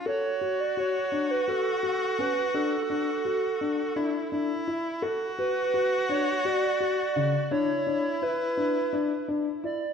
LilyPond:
<<
  \new Staff \with { instrumentName = "Soft synth lead" } { \time 7/8 \key d \major \tempo 4 = 84 cis''8. d''16 cis''8. b'16 a'4 b'8 | a'2. r8 | r8 b'4 cis''8 d''4. | cis''4 b'4. r8 d''8 | }
  \new Staff \with { instrumentName = "Viola" } { \time 7/8 \key d \major fis'2.~ fis'8~ | fis'2 e'8 e'4 | fis'2.~ fis'8 | e'2. r8 | }
  \new Staff \with { instrumentName = "Felt piano" } { \time 7/8 \key d \major a'8 fis'8 fis'8 d'8 fis'8 fis'8 cis'8 | d'8 d'8 fis'8 d'8 d'8 d'8 e'8 | a'8 fis'8 fis'8 d'8 fis'8 fis'8 cis8 | d'8 d'8 e'8 d'8 d'8 d'8 e'8 | }
>>